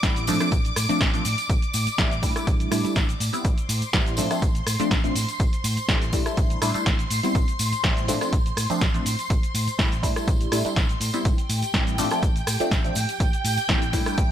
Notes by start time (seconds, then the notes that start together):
Already playing: D6
0.03 A1 G3 B3 C4 E4, kick, snare, closed hi-hat, tambourine, cabasa
0.16 closed hi-hat, cabasa
0.27 A2 F3 A3 C4 D4, open hi-hat, tambourine, cabasa
0.40 F3 A3 C4 D4, cross-stick, closed hi-hat, tambourine, cabasa
0.52 A1, kick, closed hi-hat, tambourine, cabasa
0.65 closed hi-hat, cabasa
0.76 A2, cross-stick, open hi-hat, tambourine, cabasa
0.89 F3 A3 C4 D4, muted fingered electric bass stroke, closed hi-hat, tambourine, cabasa
1.01 A1, kick, snare, closed hi-hat, tambourine, cabasa
1.13 F3 A3 C4 D4, closed hi-hat, cabasa
1.25 A2, open hi-hat, tambourine, cabasa
1.38 closed hi-hat, tambourine, cabasa
1.50 A1, kick, closed hi-hat, cabasa
1.62 closed hi-hat, cabasa
1.73 A2, open hi-hat, tambourine, cabasa
1.87 muted fingered electric bass stroke, closed hi-hat, tambourine, cabasa
1.98 A1 G3 A3 C4 E4, kick, snare, closed hi-hat, tambourine, cabasa
2.11 closed hi-hat, cabasa
2.22 A2 G3 A3 D4 E4, kick, open hi-hat, tambourine, cabasa
2.36 G3 A3 D4 E4, cross-stick, closed hi-hat, tambourine, cabasa
2.47 A1, kick, closed hi-hat, tambourine, cabasa
2.60 closed hi-hat, cabasa
2.71 A2 G3 A3 D4 E4, cross-stick, open hi-hat, tambourine, cabasa
2.84 G3 A3 D4 E4, muted fingered electric bass stroke, closed hi-hat, tambourine, cabasa
2.96 A1, kick, snare, closed hi-hat, tambourine, cabasa
3.09 closed hi-hat, cabasa
3.20 A2, open hi-hat, tambourine, cabasa
3.33 G3 B3 C4 E4, closed hi-hat, tambourine, cabasa
3.44 A1 C6, kick, closed hi-hat, tambourine, cabasa
3.58 closed hi-hat, cabasa
3.69 A2, open hi-hat, tambourine, cabasa
3.82 muted fingered electric bass stroke, closed hi-hat, tambourine, cabasa
3.93 A1 G3 B3 C4 E4, kick, snare, closed hi-hat, cabasa
4.06 closed hi-hat, cabasa
4.17 A2 F3 A3 C4 D4, open hi-hat, tambourine, cabasa
4.31 F3 A3 C4 D4, cross-stick, closed hi-hat, tambourine, cabasa
4.42 A1, kick, closed hi-hat, tambourine, cabasa
4.55 closed hi-hat, cabasa
4.67 A2, cross-stick, open hi-hat, tambourine, cabasa
4.79 F3 A3 C4 D4, muted fingered electric bass stroke, closed hi-hat, tambourine, cabasa
4.91 A1, kick, snare, closed hi-hat, tambourine, cabasa
5.04 F3 A3 C4 D4, closed hi-hat, cabasa
5.15 A2, open hi-hat, tambourine, cabasa
5.29 closed hi-hat, tambourine, cabasa
5.40 A1, kick, closed hi-hat, tambourine, cabasa
5.53 closed hi-hat, cabasa
5.64 A2, open hi-hat, tambourine, cabasa
5.77 muted fingered electric bass stroke, closed hi-hat, tambourine, cabasa
5.88 A1 G3 A3 C4 E4, kick, snare, closed hi-hat, cabasa
6.02 closed hi-hat, cabasa
6.13 A2 G3 A3 D4 E4, kick, open hi-hat, tambourine, cabasa
6.26 G3 A3 D4 E4, cross-stick, closed hi-hat, tambourine, cabasa
6.37 A1, kick, closed hi-hat, tambourine, cabasa
6.50 closed hi-hat, cabasa
6.61 A2 G3 A3 D4 E4, cross-stick, open hi-hat, tambourine, cabasa
6.74 G3 A3 D4 E4, muted fingered electric bass stroke, closed hi-hat, tambourine, cabasa
6.86 A1, kick, snare, closed hi-hat, cabasa
6.99 closed hi-hat, cabasa
7.10 A2, open hi-hat, tambourine, cabasa
7.23 G3 B3 C4 E4, closed hi-hat, tambourine, cabasa
7.35 A1, kick, closed hi-hat, tambourine, cabasa
7.48 closed hi-hat, cabasa
7.59 A2, open hi-hat, tambourine, cabasa
7.72 muted fingered electric bass stroke, closed hi-hat, tambourine, cabasa
7.84 A1 G3 B3 C4 E4, kick, snare, closed hi-hat, tambourine, cabasa
7.97 closed hi-hat, cabasa
8.08 A2 F3 A3 C4 D4, open hi-hat, tambourine, cabasa
8.21 F3 A3 C4 D4, cross-stick, closed hi-hat, tambourine, cabasa
8.33 A1, kick, closed hi-hat, tambourine, cabasa
8.46 closed hi-hat, cabasa
8.57 A2, cross-stick, open hi-hat, tambourine, cabasa
8.70 F3 A3 C4 D4, muted fingered electric bass stroke, closed hi-hat, tambourine, cabasa
8.81 A1, kick, snare, closed hi-hat, tambourine, cabasa
8.94 F3 A3 C4 D4, closed hi-hat, cabasa
9.06 A2, open hi-hat, tambourine, cabasa
9.19 closed hi-hat, tambourine, cabasa
9.30 A1, kick, closed hi-hat, cabasa
9.43 closed hi-hat, cabasa
9.54 A2, open hi-hat, tambourine, cabasa
9.67 muted fingered electric bass stroke, closed hi-hat, tambourine, cabasa
9.78 A1 G3 A3 C4 E4, kick, snare, closed hi-hat, tambourine, cabasa
9.92 closed hi-hat, cabasa
10.03 A2 G3 A3 D4 E4, kick, open hi-hat, tambourine, cabasa
10.16 G3 A3 D4 E4, cross-stick, closed hi-hat, tambourine, cabasa
10.28 A1, kick, closed hi-hat, tambourine, cabasa
10.41 closed hi-hat, cabasa
10.52 A2 G3 A3 D4 E4, cross-stick, open hi-hat, tambourine, cabasa
10.65 G3 A3 D4 E4, muted fingered electric bass stroke, closed hi-hat, tambourine, cabasa
10.76 A1, kick, snare, closed hi-hat, tambourine, cabasa
10.89 closed hi-hat, cabasa
11.00 A2, open hi-hat, tambourine, cabasa
11.13 G3 B3 C4 E4, closed hi-hat, tambourine, cabasa
11.25 A1 G5, kick, closed hi-hat, cabasa
11.38 closed hi-hat, cabasa
11.49 A2, open hi-hat, tambourine, cabasa
11.62 muted fingered electric bass stroke, closed hi-hat, tambourine, cabasa
11.74 A1 G3 B3 C4 E4, kick, snare, closed hi-hat, tambourine, cabasa
11.87 closed hi-hat, cabasa
11.98 A2 F3 A3 C4 D4, open hi-hat, tambourine, cabasa
12.10 F3 A3 C4 D4, cross-stick, closed hi-hat, tambourine, cabasa
12.23 A1, kick, closed hi-hat, cabasa
12.36 closed hi-hat, cabasa
12.47 A2, cross-stick, open hi-hat, tambourine, cabasa
12.60 F3 A3 C4 D4, muted fingered electric bass stroke, closed hi-hat, tambourine, cabasa
12.71 A1, kick, snare, closed hi-hat, tambourine, cabasa
12.84 F3 A3 C4 D4, closed hi-hat, cabasa
12.95 A2, open hi-hat, tambourine, cabasa
13.09 closed hi-hat, tambourine, cabasa
13.20 A1, kick, closed hi-hat, tambourine, cabasa
13.33 closed hi-hat, cabasa
13.45 A2, open hi-hat, tambourine, cabasa
13.57 muted fingered electric bass stroke, closed hi-hat, tambourine, cabasa
13.69 A1 G3 A3 C4 E4, kick, snare, closed hi-hat, cabasa
13.82 closed hi-hat, cabasa
13.93 A2 G3 A3 D4 E4, kick, open hi-hat, tambourine, cabasa
14.06 G3 A3 D4 E4, cross-stick, closed hi-hat, tambourine, cabasa
14.18 A1, kick, closed hi-hat, tambourine, cabasa